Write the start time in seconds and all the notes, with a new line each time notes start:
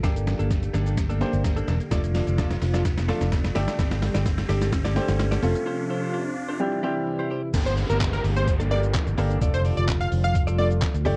Already playing: A4, riser
0.03 D3 A#3 D4 G4 A4, kick, snare, closed hi-hat, shaker
0.16 muted clean electric guitar stroke, closed hi-hat, shaker
0.27 muted clean electric guitar stroke, snare, shaker
0.39 G1 A#3 D4 A4, closed hi-hat, shaker
0.50 muted clean electric guitar stroke, kick, snare, closed hi-hat, shaker
0.63 muted clean electric guitar stroke, closed hi-hat, shaker
0.73 G1 A#3 D4 A4, snare, shaker
0.86 A#3 D4 A4, closed hi-hat, shaker
0.97 muted clean electric guitar stroke, kick, snare, closed hi-hat, shaker
1.09 A#3 D4 A4, closed hi-hat, shaker
1.20 A#3 D4 G4 A4 C5, snare, shaker
1.33 G1, muted clean electric guitar stroke, closed hi-hat, shaker
1.44 muted clean electric guitar stroke, kick, snare, closed hi-hat, shaker
1.56 A#3 D4 A4, closed hi-hat, shaker
1.67 E1 A#3 D4 A4, snare, shaker
1.80 muted clean electric guitar stroke, closed hi-hat, shaker
1.91 F1 F3 A3 D4 F4 A4 D5, kick, snare, closed hi-hat, shaker
2.03 muted clean electric guitar stroke, closed hi-hat, shaker
2.14 F4 A4 D5, snare, open hi-hat, shaker
2.27 F1 F4 A4 D5, closed hi-hat, shaker
2.38 F4 A4 D5, kick, snare, closed hi-hat, shaker
2.50 muted clean electric guitar stroke, snare, closed hi-hat, shaker
2.61 F1, muted clean electric guitar stroke, snare, open hi-hat, shaker
2.74 F4 A4 D5, snare, closed hi-hat, shaker
2.85 muted clean electric guitar stroke, kick, snare, closed hi-hat, shaker
2.97 muted clean electric guitar stroke, snare, closed hi-hat, shaker
3.08 A3 D4 F4 A4 D5, snare, open hi-hat, shaker
3.21 F1, muted clean electric guitar stroke, snare, closed hi-hat, shaker
3.32 muted clean electric guitar stroke, kick, snare, closed hi-hat, shaker
3.44 muted clean electric guitar stroke, snare, closed hi-hat, shaker
3.55 G1 D3 G3 A3 D4 G4 A4 D5, snare, open hi-hat, shaker
3.67 G4 A4 D5, snare, closed hi-hat, shaker
3.78 G1 G4 A4 D5, kick, snare, closed hi-hat, shaker
3.91 muted clean electric guitar stroke, snare, closed hi-hat, shaker
4.02 muted clean electric guitar stroke, snare, open hi-hat, shaker
4.14 G1 G4 A4 D5, snare, closed hi-hat, shaker
4.26 kick, snare, closed hi-hat, shaker
4.38 muted clean electric guitar stroke, snare, closed hi-hat, shaker
4.49 G1 G4 A4 D5, snare, open hi-hat, shaker
4.61 G4 A4 D5, snare, closed hi-hat, shaker
4.72 kick, snare, closed hi-hat, shaker
4.85 G4 A4 D5, snare, closed hi-hat, shaker
4.96 A3 D4 G4 A4 C5 D5, snare, open hi-hat, shaker
5.08 G1, muted clean electric guitar stroke, snare, closed hi-hat, shaker
5.19 muted clean electric guitar stroke, snare, closed hi-hat, shaker
5.31 G4 A4 D5, snare, closed hi-hat, shaker
5.42 F1 C3 F3 A3 C4 F4 A4 C5, open hi-hat, shaker
5.55 muted clean electric guitar stroke, closed hi-hat, shaker
5.66 F4 A4 C5
5.78 muted clean electric guitar stroke
5.89 F4 A4 C5
6.02 F4 A4 C5
6.13 F4 A4 C5
6.25 muted clean electric guitar stroke
6.36 muted clean electric guitar stroke
6.49 F4 A4 C5
6.60 E3 G3 C4 E4 G4, muted clean electric guitar stroke
6.72 muted clean electric guitar stroke
6.83 G3 C4 E4 G4 C5
6.96 muted clean electric guitar stroke
7.07 muted clean electric guitar stroke
7.19 E4 G4 C5
7.30 E4 G4 C5
7.43 muted clean electric guitar stroke
7.53 G1 D3 G3 A#3 D4 G4 A4 A#4, kick, closed hi-hat, crash, downlifter, shaker
7.66 C5, closed hi-hat, shaker
7.77 A#3 D4 A4, open hi-hat, shaker
7.89 G1 A#3 D4 A4 A#4, closed hi-hat, shaker
8.00 muted clean electric guitar stroke, kick, snare, clap, closed hi-hat, shaker
8.13 A#4, muted clean electric guitar stroke, closed hi-hat, shaker
8.24 G1, open hi-hat, shaker
8.36 C5, muted clean electric guitar stroke, closed hi-hat, shaker
8.47 muted clean electric guitar stroke, kick, closed hi-hat, shaker
8.60 A#3 D4 A4, closed hi-hat, shaker
8.71 A#3 D4 G4 A4 A#4 D5, open hi-hat, shaker
8.83 muted clean electric guitar stroke, closed hi-hat, shaker
8.94 muted clean electric guitar stroke, kick, snare, clap, closed hi-hat, shaker
9.07 G1, muted clean electric guitar stroke, closed hi-hat, shaker
9.18 G1 A#3 D4 G4 A4 A#4, open hi-hat, shaker
9.30 A#3 D4 A4, closed hi-hat, shaker
9.41 F1 F3 A3 D4 F4 A4 D5, kick, closed hi-hat, shaker
9.54 C5, closed hi-hat, shaker
9.64 F4 A4 D5, open hi-hat, shaker
9.77 F1 F4 A4 D5, closed hi-hat, shaker
9.88 muted clean electric guitar stroke, kick, snare, clap, closed hi-hat, shaker
10.00 F5, muted clean electric guitar stroke, closed hi-hat, shaker
10.12 F1, open hi-hat, shaker
10.24 F5, muted clean electric guitar stroke, shaker
10.35 muted clean electric guitar stroke, kick, closed hi-hat, shaker
10.47 F4 A4 D5, closed hi-hat, shaker
10.58 A3 D4 F4 A4 D5, open hi-hat, shaker
10.71 closed hi-hat, shaker
10.82 muted clean electric guitar stroke, kick, snare, clap, closed hi-hat, shaker
10.94 D2, muted clean electric guitar stroke, closed hi-hat, shaker
11.05 G1 G3 A3 D4 G4 A4 D5, open hi-hat, shaker